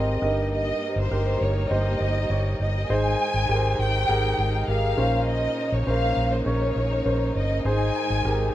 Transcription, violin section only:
Already playing: D#5
0.53 D#5
0.98 C5
1.42 C#5
1.72 D#5
2.61 D#5
2.91 G#5
3.80 G5
4.69 F5
5.29 D#5
5.73 C#5
5.88 F5
6.33 C5
6.48 C#5
7.37 D#5
7.66 G#5

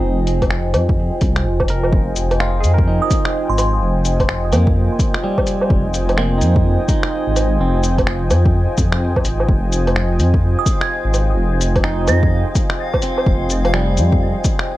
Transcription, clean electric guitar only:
Already playing: C4 D#4 G#4
1.70 A#4
2.40 F4
2.60 G#4
2.74 A#4
2.88 D#4
4.53 A#3
5.24 G3
6.18 A#3 C4
6.38 D#4
6.89 D#4
7.61 C4
11.84 D#4
13.03 C4
13.74 G3

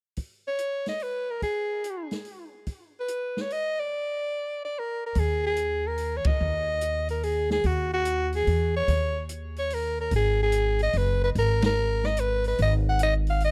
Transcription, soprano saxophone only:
0.48 C#5
0.89 D#5
1.03 B4
1.31 A#4
1.43 G#4
3.00 B4
3.41 C#5
3.53 D#5
3.80 D5
4.65 D5
4.79 A#4
5.06 A#4
5.19 G#4
5.46 G#4
5.87 A#4
6.17 C#5
6.27 D#5
7.11 A#4
7.24 G#4
7.52 G#4
7.66 F#4
7.94 F#4
8.35 G#4
8.76 C#5
9.59 C#5
9.74 A#4
10.01 A#4
10.16 G#4
10.43 G#4
10.83 D#5
10.97 B4
11.24 B4
11.39 A#4
11.66 A#4
12.06 D#5
12.20 B4
12.48 B4
12.62 D#5
12.89 F#5
13.03 D#5
13.30 F5
13.44 D#5

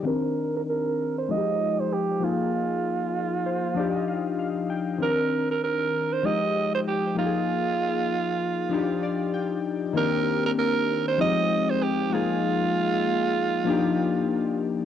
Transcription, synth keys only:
0.03 D#3 C4 D4
0.08 A#4
1.28 F3 G#3 D#4 F#4
1.37 G4
2.20 F3 A#3 D#4
2.25 G#4
3.46 C5
3.75 F3 D4 D#4 D5
3.80 G4
3.95 D#5
4.08 F5
4.39 F5
4.70 G5
4.98 D#3 C4 D4
5.03 A#4
6.23 F3 G#3 D#4 G4
7.15 F3 A#3 D#4
7.20 G4
7.26 G#4
8.69 F3 D4 D#4
8.74 G4
9.03 D5
9.34 G5
9.93 D#3 A#3 C4 D4
9.98 G4
11.18 F3 G3 C4 D#4 G4
11.25 G#3
12.10 F3 G#3 A#3 D#4
12.15 G#4
13.64 F3 A#3 D4 D#4
13.69 G4

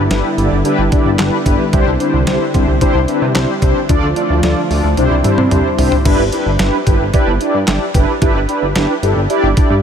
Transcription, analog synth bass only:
0.11 G1
0.38 G1
0.52 G1
0.79 G1
1.06 G2
1.19 G1
1.46 G1
1.73 C2
1.87 C2
2.14 C2
2.27 C2
2.54 C2
2.68 C2
2.95 C2
3.22 C3
3.35 C2
3.62 C2
3.89 D2
4.03 D2
4.30 D2
4.43 D2
4.70 D2
4.84 D2
4.97 C2
5.11 C2
5.38 C3
5.51 C2
5.78 C2
6.05 G1
6.19 G1
6.46 G1
6.60 G1
6.87 G1
7.00 G1
7.27 G1
7.54 G2
7.68 G1
7.94 G1
8.22 G1
8.35 G1
8.62 G1
8.76 G1
9.03 G1
9.16 G1
9.43 G1
9.70 G2

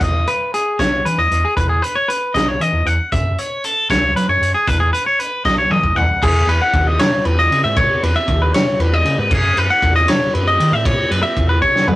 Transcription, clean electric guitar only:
0.02 D#5
0.28 B4
0.54 G#4
0.79 C#5
1.05 B4
1.19 D#5
1.45 G#4
1.57 B4
1.69 G#4
1.82 B4
1.95 C#5
2.08 B4
2.34 D#5
2.48 C#5
2.61 D#5
2.87 F#5
3.12 E5
3.39 C#5
3.65 A4
3.90 C#5
4.16 B4
4.29 C#5
4.54 G#4
4.68 B4
4.80 G#4
4.93 B4
5.06 C#5
5.19 B4
5.45 D#5
5.58 C#5
5.71 D#5
5.96 F#5
6.23 G#4
6.49 B4
6.62 F#5
6.87 D#5
7.00 C#5
7.25 B4
7.39 D#5
7.64 E5
7.77 C#5
8.03 B4
8.16 E5
8.42 B4
8.55 C#5
8.80 B4
8.94 D#5
9.19 B4
9.33 G#4
9.58 B4
9.70 F#5
9.96 D#5
10.08 C#5
10.34 B4
10.48 D#5
10.73 E5
10.86 C#5
11.11 B4
11.23 E5
11.49 B4
11.62 C#5
11.87 B4

